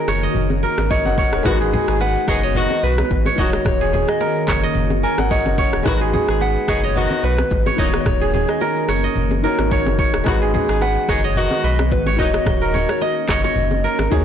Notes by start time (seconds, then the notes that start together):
Already playing: D#3 A#3 C#4 D#4 F#4 G#4 A#4 C#5 D#5
0.08 F#1 C#5, cross-stick, open hi-hat, shaker
0.23 D#5, shaker
0.35 F#1, low conga, shaker
0.50 low bongo, shaker
0.63 A#4, shaker
0.78 G#1, cross-stick, low bongo, shaker
0.90 C#5 D#5, kick, high bongo, shaker
1.05 F#1 D#5 F#5, low bongo, shaker
1.17 C#5, kick, shaker
1.33 D#1 A#4 C#5, cross-stick, high bongo, shaker
1.43 G#1 D#3 G#3 B3 D#4 F#4, kick, cross-stick, low conga, shaker
1.48 B4
1.60 G#4, shaker
1.73 G#4, low bongo, low conga, shaker
1.87 G#1 D#3 B3 G#4, cross-stick, shaker
2.00 B4 F#5, high bongo, shaker
2.15 shaker
2.28 F#1 D#3 B3 G#4 C#5 D#5, kick, cross-stick, open hi-hat, shaker
2.43 C#5 D#5, shaker
2.55 D#3 B3 F#4 D#5, low conga, shaker
2.70 low bongo, shaker
2.83 B1 B4, shaker
2.98 cross-stick, low bongo, shaker
3.10 G#1, kick, high bongo, shaker
3.26 C#5, low bongo, shaker
3.36 D#1 D#3 A#3 C#4 D#4 F#4 C#5 D#5, kick, shaker
3.41 C#5
3.53 cross-stick, high bongo, shaker
3.65 D#1 C#5, kick, cross-stick, low conga, shaker
3.81 G#4, shaker
3.93 G#4, low bongo, low conga, shaker
4.08 D#5, cross-stick, shaker
4.20 A#4, high bongo, shaker
4.36 shaker
4.48 F#1 C#5, kick, cross-stick, clap, shaker
4.63 D#5, shaker
4.75 F#1, low conga, shaker
4.90 low bongo, shaker
5.03 A#4 G#5, shaker
5.18 G#1 F#5, cross-stick, low bongo, shaker
5.30 C#5 D#5, kick, high bongo, shaker
5.46 F#1, low bongo, shaker
5.58 C#5, kick, shaker
5.73 D#1, cross-stick, high bongo, shaker
5.83 G#1 D#3 G#3 B3 D#4 F#4, kick, cross-stick, low conga, shaker
5.88 B4
6.01 G#4, shaker
6.13 G#4, low bongo, low conga, shaker
6.28 G#1 D#3 B3 G#4, cross-stick, shaker
6.40 B4 F#5, high bongo, shaker
6.56 shaker
6.68 F#1 D#3 B3 G#4 C#5 D#5, kick, cross-stick, open hi-hat, shaker
6.84 C#5 D#5, shaker
6.95 D#3 B3 F#4 D#5, low conga, shaker
7.10 low bongo, shaker
7.23 B1 B4, shaker
7.38 cross-stick, low bongo, shaker
7.50 G#1, kick, high bongo, shaker
7.66 C#5, low bongo, shaker
7.76 D#1 A#2 D#3 F#3 A#3 C#4 D#4 F#4 C#5 D#5, kick, shaker
7.81 C#5
7.93 cross-stick, high bongo, shaker
8.01 D#5
8.06 D#1 C#5, kick, cross-stick, low conga, shaker
8.21 G#4, shaker
8.34 G#4, low bongo, low conga, shaker
8.48 D#5, cross-stick, shaker
8.60 A#4, high bongo, shaker
8.76 shaker
8.89 F#1 C#5, cross-stick, open hi-hat, shaker
9.04 D#5, shaker
9.16 F#1, low conga, shaker
9.31 low bongo, shaker
9.42 D#3 D#4 F#4 A#4 C#5, shaker
9.59 G#1, cross-stick, low bongo, shaker
9.71 C#5, kick, high bongo, shaker
9.86 F#1, low bongo, shaker
9.98 C#5, kick, shaker
10.14 D#1, cross-stick, high bongo, shaker
10.24 G#1 D#3 G#3 B3 D#4 F#4, kick, cross-stick, low conga, shaker
10.29 B4
10.41 G#4, shaker
10.54 G#4, low bongo, low conga, shaker
10.68 G#1 D#3 B3 G#4, cross-stick, shaker
10.81 B4 F#5, high bongo, shaker
10.96 shaker
11.08 F#1 D#3 B3 G#4 C#5 D#5, kick, cross-stick, open hi-hat, shaker
11.24 C#5 D#5, shaker
11.36 D#3 B3 F#4 D#5, low conga, shaker
11.51 low bongo, shaker
11.64 B1 B4 D#5, shaker
11.79 cross-stick, low bongo, shaker
11.91 G#1 B4, kick, high bongo, shaker
12.06 C#5, low bongo, shaker
12.16 D#1 A#2 D#3 F#3 A#3 C#4 D#4 F#4 D#5, kick, shaker
12.22 C#5
12.34 cross-stick, high bongo, shaker
12.46 D#1 D#5, kick, cross-stick, low conga, shaker
12.62 A#4, shaker
12.74 C#5, low bongo, low conga, shaker
12.88 C#5, cross-stick, shaker
13.00 D#5, high bongo, shaker
13.16 shaker
13.29 F#1 C#5 D#5, kick, cross-stick, clap, shaker
13.44 C#5, high bongo, shaker
13.56 F#1, low conga, shaker
13.71 low bongo, shaker
13.84 A#4, shaker
13.99 G#1, cross-stick, low bongo, shaker
14.10 D#2 D#3 D#4 F#4 G#4 C#5, kick, high bongo, shaker